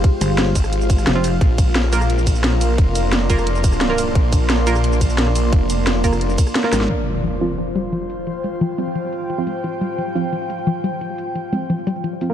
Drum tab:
RD |--x---x---x---x-|--x---x---x---x-|--x---x---x---x-|--x---x---x---x-|
HH |x-x-x-o-x-x-x-o-|x-x-x-o-x-x-x-o-|x-x-x-o-x-x-x-o-|x-x-x-o-x-x-x-o-|
SH |--x---xx-xxx--x-|--x---xx-xxx--x-|--x---xx-xxx--x-|--x---xx-xxx--x-|
SD |----or-r---ro---|----or-r----or--|----or-r---ro---|----or-r----or--|
BD |o-----o---o-----|o-o-------o-----|o-----o---o-----|o-o-------o-----|

RD |--x---x---x---x-|----------------|----------------|----------------|
HH |x-x-x-o-x-x-x-o-|--x-x-o-x-x-x-o-|x-x-x-o-x-x-x-o-|x-x-x-o-x-x-x-o-|
SH |--x---xx-xxx--x-|--x---xx-xxx--x-|--x---xx-xxx--x-|--x---xx-xxx--x-|
SD |----or-r---roooo|----------------|----------------|----------------|
BD |o-----o---o-----|----------------|----------------|----------------|

RD |----------------|
HH |x-x-x-o-x-x-x-o-|
SH |--x---xx-xxx--x-|
SD |----------------|
BD |----------------|